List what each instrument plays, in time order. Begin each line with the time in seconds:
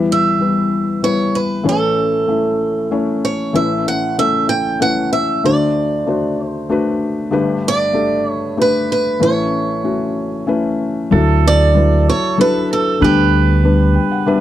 Already playing: felt piano E2 E3 G3 B3 E4 B4
0.12 steel-string acoustic guitar E5
0.39 felt piano G3 B3 E4 B4
1.02 felt piano G3 B3 E4 B4, steel-string acoustic guitar C#5
1.35 steel-string acoustic guitar B4
1.63 felt piano A1 A2 A3 C#4 E4 C#5
1.69 steel-string acoustic guitar A4
2.27 felt piano A3 C#4 E4 E5
2.91 felt piano A3 C#4 E4 C#5
3.25 steel-string acoustic guitar C#5
3.53 felt piano A1 A2 A3 C#4 E4 B4, steel-string acoustic guitar E5
3.88 steel-string acoustic guitar F#5
4.18 felt piano A3 C#4 E4 A4, steel-string acoustic guitar E5
4.49 steel-string acoustic guitar G5
4.80 felt piano A3 C#4 E4 B4, steel-string acoustic guitar F#5
5.13 steel-string acoustic guitar E5
5.44 felt piano D2 D3 A3 D4 F#4 C5, steel-string acoustic guitar D5
6.06 felt piano A3 D4 F#4 C5
6.47 steel-string acoustic guitar C5
6.69 felt piano A3 D4 F#4 B4
7.31 felt piano G1 G2 A3 D4 G4 B4
7.68 steel-string acoustic guitar D5
7.93 felt piano A3 D4 G4 A4
8.28 steel-string acoustic guitar C#5
8.57 felt piano A3 D4 G4 B4
8.62 steel-string acoustic guitar B4
8.92 steel-string acoustic guitar B4
9.20 felt piano A1 A2 A3 C#4 E4 B4, steel-string acoustic guitar C#5
9.84 felt piano A3 C#4 E4 F#4
10.47 felt piano A3 C#4 E4 B4
11.11 felt piano D2 D3 F#3 D4 E4 A4, upright bass D2, pedal steel guitar A4
11.48 steel-string acoustic guitar D5
11.75 felt piano F#3 D4 E4 B4
12.09 steel-string acoustic guitar C#5
12.38 felt piano F#3 D4 E4 A4, steel-string acoustic guitar B4
12.73 steel-string acoustic guitar A4
13.00 felt piano D2 D3 G3 B3 D4 B4, upright bass D2, pedal steel guitar B4
13.04 steel-string acoustic guitar G4
13.63 felt piano G3 B3 D4 B4
13.94 felt piano G5
14.11 felt piano F#5
14.26 felt piano G3 B3 D4 B4 E5